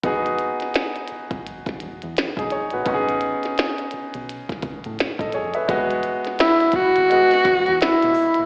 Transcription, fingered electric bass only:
X:1
M:4/4
L:1/16
Q:"Swing 16ths" 1/4=85
K:E
V:1 name="Fingered electric bass" clef=bass
E,,,3 z4 G,,,2 z E,,, E,, z B,,, z ^A,,, | A,,,3 z4 B,,,2 z C,, A,, z A,,, =F,,,2 | E,,,3 z4 G,,,2 z E,,, E,, z B,,, z ^A,,, |]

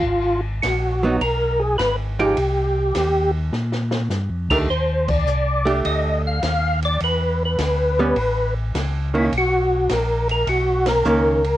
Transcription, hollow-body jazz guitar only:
X:1
M:4/4
L:1/8
Q:"Swing" 1/4=104
K:Abdor
V:1 name="Hollow-body jazz guitar"
z3 [G,CE] z3 [F,A,E=G] | z6 z [E,=A,=D=G] | z3 [=A,=D=G]3 z2 | z3 [=G,=B,D] z3 [E,_B,^C] |
z6 [^D,^A,^C] z |]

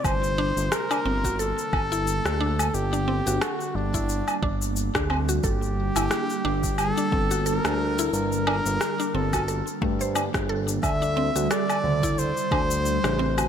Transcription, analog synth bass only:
X:1
M:4/4
L:1/16
Q:"Swing 16ths" 1/4=89
K:G
V:1 name="Analog synth bass" clef=bass
G,,,3 G,,, z2 G,,,3 z G,,,3 D,,3 | G,,,3 G,,, z2 G,,,3 z G,,,3 D,,3 | G,,,3 G,,, z2 G,,,3 z G,,,3 D,,3 | G,,,3 G,,, z2 G,,,3 z G,,3 G,,,3 |
D,,3 D,, z2 D,,3 z D,,3 A,,,3 |]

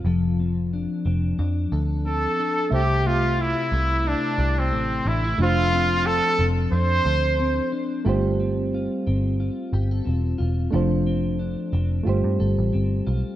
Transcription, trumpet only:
X:1
M:4/4
L:1/16
Q:"Swing 16ths" 1/4=90
K:Flyd
V:1 name="Trumpet"
z12 A4 | G2 F2 E4 D3 C3 E2 | F4 A2 z2 c6 z2 | z16 |
z16 |]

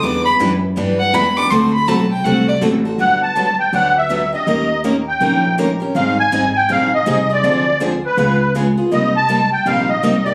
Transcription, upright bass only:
X:1
M:4/4
L:1/8
Q:"Swing" 1/4=162
K:Dmix
V:1 name="Upright bass" clef=bass
E,,2 F,,2 G,,2 E,,2 | D,,2 B,,,2 C,,2 A,,,2 | G,,,4 D,,4 | _E,,4 _B,,,4 |
_A,,,2 A,,,2 _B,,,2 C,,2 | D,,4 ^C,,4 | C,,4 _B,,,2 C,,2 |]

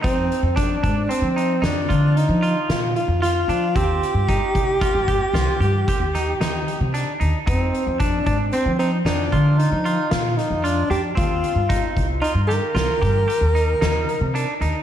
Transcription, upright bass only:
X:1
M:7/4
L:1/16
Q:1/4=113
K:Eb
V:1 name="Upright bass" clef=bass
F,,2 z F,,3 A,,2 z F,3 F,,2 D,3 F,2 z B,,2 z F,,3 F,2 | E,,2 z G,,2 z C,,2 z G,,2 z C,, z G,,2 z E,,3 E,,2 z C,2 z E,, z | F,,2 z F,,3 A,,2 z F,3 F,,2 D,3 F,2 z B,,2 z F,,3 F,,2 | E,,2 z G,,2 z C,,2 z G,,2 z C,, z G,,2 z E,,3 E,,2 z C,2 z E,, z |]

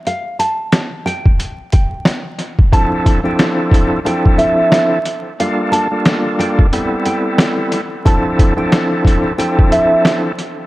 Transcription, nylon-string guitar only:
X:1
M:4/4
L:1/16
Q:"Swing 16ths" 1/4=90
K:Dm
V:1 name="Nylon-string guitar"
f2 a4 g4 g6 | a3 g4- g g2 e3 z3 | f2 a4 g4 g6 | a3 g4- g g2 e3 z3 |]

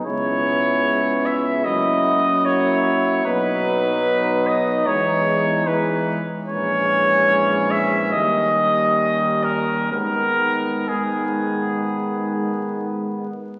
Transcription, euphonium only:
X:1
M:4/4
L:1/8
Q:1/4=73
K:G#m
V:1 name="Euphonium" clef=bass
B,4 A,2 A,2 | B,4 G,2 G, z | G,4 =G,4 | G,2 G,4- G, z |]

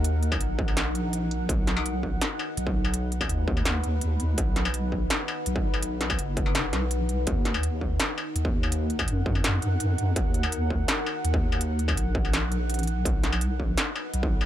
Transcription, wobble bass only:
X:1
M:4/4
L:1/8
Q:1/4=166
K:Ebm
V:1 name="Wobble bass" clef=bass
E,,2 B,,,6 | =B,,,4 z2 B,,,2- | =B,,,2 ^D,,6 | =B,,,4 z2 B,,,2- |
=B,,,2 ^F,,,3 B,,,3 | E,,4 z2 E,,2- | E,,2 G,,6 | z6 E,,2- |
E,,2 B,,,6 | =B,,,4 z2 B,,,2 |]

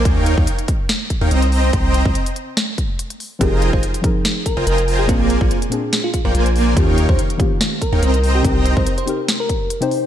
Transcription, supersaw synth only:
X:1
M:4/4
L:1/16
Q:"Swing 16ths" 1/4=143
K:Cphr
V:1 name="Supersaw synth"
[EBdfg]3 [EBdfg] z6 z [EBdfg] [Ccegb]4 | [Ccegb]3 [Ccegb] z12 | [Fcegab]3 [Fcegab] z6 z [Fcegab] [Fcegab]4 | [B,Bc=da]3 [B,Bcda] z6 z [B,Bcdg] [B,Bcda]4 |
[EBdfg]3 [EBdfg] z6 z [EBdfg] [Ccegb]4 | [Ccegb]3 [Ccegb] z12 |]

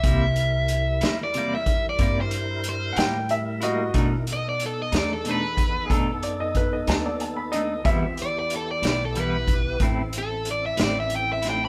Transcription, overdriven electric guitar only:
X:1
M:12/8
L:1/16
Q:3/8=61
K:Clyd
V:1 name="Overdriven electric guitar"
e6- e d2 e2 d2 c3 c2 z6 | z2 ^d =d A ^d =d A B4 z12 | z2 d d A d d A B4 z2 A2 d e d e g e g b |]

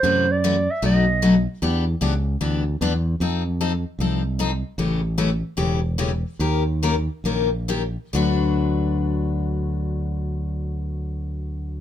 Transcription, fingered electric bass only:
X:1
M:4/4
L:1/8
Q:"Swing" 1/4=150
K:D
V:1 name="Fingered electric bass" clef=bass
F,,4 B,,,4 | E,,2 C,,2 D,,2 E,,2 | =F,,4 =C,,4 | A,,,4 E,,,4 |
_E,,4 _B,,,4 | D,,8- | D,,8 |]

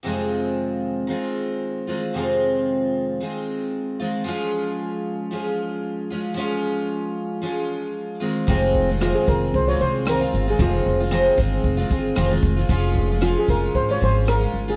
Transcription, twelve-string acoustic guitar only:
X:1
M:4/4
L:1/16
Q:"Swing 16ths" 1/4=114
K:Fm
V:1 name="Twelve-string acoustic guitar" clef=bass
[F,,C,E,A,CF]8 [E,A,CF]6 [E,A,CF]2 | [F,,C,E,A,CF]8 [E,A,CF]6 [E,A,CF]2 | [F,A,DF]8 [F,A,DF]6 [A,DF]2 | [F,A,DF]8 [F,A,DF]6 [E,A,CF]2 |
[F,,C,E,A,CF]3 [E,A,CF] [F,,C,E,A,CF]2 [E,A,CF]3 [E,A,CF] [E,A,CF]2 [F,,C,E,A,CF] [E,A,CF]2 [E,A,CF] | [F,,C,E,A,CF]3 [E,A,CF] [F,,C,E,A,CF]2 [E,A,CF]3 [E,A,CF] [E,A,CF]2 [F,,C,E,A,CF] [E,A,CF]2 [E,A,CF] | [F,A,DF]3 [A,DF] [F,A,DF]2 [F,A,DF]3 [A,DF] [F,A,DF]2 [F,A,DF] [A,DF]2 [A,DF] |]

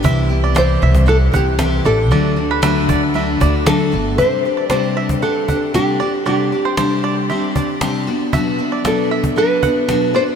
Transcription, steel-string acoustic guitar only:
X:1
M:4/4
L:1/8
Q:1/4=116
K:Clyd
V:1 name="Steel-string acoustic guitar"
[C,E,CEG] [CEG] [C,E,CEG]2 [E,CEG] [CEG] [C,E,CEG] [CEG] | [D,F,A,DF] [A,DF] [D,F,A,DF]2 [F,A,DF] [A,DF] [D,F,A,DF] [A,DF] | [C,G,CDG] [CDG] [C,G,CDG]2 [G,CDG] [CDG] [C,G,CDG] [CDG] | [C,G,CDG] [CDG] [C,G,CDG]2 [G,CDG] [CDG] [C,G,CDG] [B,DF] |
[B,,F,B,DF] [B,DF] [B,,F,B,DF]2 [F,B,DF] [B,DF] [B,,F,B,DF] [B,DF] |]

